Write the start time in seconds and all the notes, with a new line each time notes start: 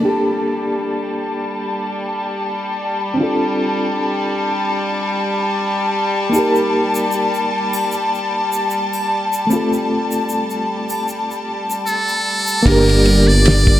0.00 G3 A#3 D4 A5
0.05 G4 A4
3.14 C4 D4
3.20 F4 A4
6.30 A#3 D#4
6.34 G4, shaker
6.39 A#4
6.55 shaker
6.95 shaker
7.11 shaker
7.34 shaker
7.73 triangle, shaker
7.91 shaker
8.14 shaker
8.52 shaker
8.70 shaker
8.93 triangle, shaker
9.33 shaker
9.47 A3 C4, shaker
9.53 F4 A4
9.73 shaker
10.11 shaker
10.29 shaker
10.50 shaker
10.89 triangle, shaker
11.08 shaker
11.31 shaker
11.70 shaker
11.87 A4, shaker
12.08 shaker
12.47 shaker
12.63 G1 A#3 D4 D5, kick, crash, ride
12.67 G4 A#4
12.72 A#4
12.89 ride
13.05 ride
13.27 D5
13.46 snare, ride
13.67 kick